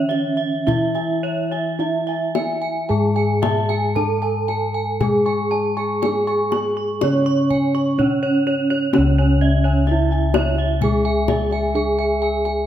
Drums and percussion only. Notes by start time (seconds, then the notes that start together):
0.11 kendang slap
0.68 kendang low
0.96 kendang slap
1.52 kendang slap
1.79 kendang slap
2.35 kendang high
3.16 kendang slap
3.43 kendang high, kendang low
3.70 kendang slap
3.96 kendang slap, kendang low
4.49 kendang slap
5.01 kendang low
5.26 kendang slap
5.52 kendang slap
5.77 kendang slap
6.03 kendang slap, kendang high
6.28 kendang slap
6.52 kendang high
7.01 kendang high
7.26 kendang slap
7.51 kendang low
7.74 kendang slap
7.99 kendang slap, kendang low
8.47 kendang slap
8.71 kendang slap
8.93 kendang high
9.87 kendang slap
10.34 kendang slap, kendang high
10.58 kendang slap
10.81 kendang low
11.28 kendang high, kendang low
11.51 kendang slap
11.75 kendang slap
12.46 kendang slap